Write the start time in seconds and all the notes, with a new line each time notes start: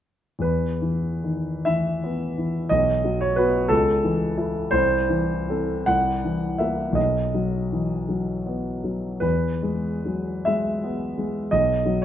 0.39 E2 B4
0.82 E3
1.24 D#3
1.65 E3 E5
2.04 B3
2.38 E3
2.69 B1 D#5
3.04 F#3
3.21 C#5
3.36 B3 F#4 B4
3.68 C#2 A4
4.04 E3
4.37 E4 A4
4.71 C2 C5
5.09 E3
5.49 C4 A4
5.86 C2 F#5
6.24 E3
6.58 A#3 A#4 E5
6.93 B1 D#5
7.34 F#3
7.72 E3
8.09 F#3
8.46 B3
8.84 F#3
9.20 E2 B4
9.62 G#3
10.05 F#3
10.45 G#3 E5
10.84 B3
11.18 G#3
11.51 B1 D#5
11.86 F#3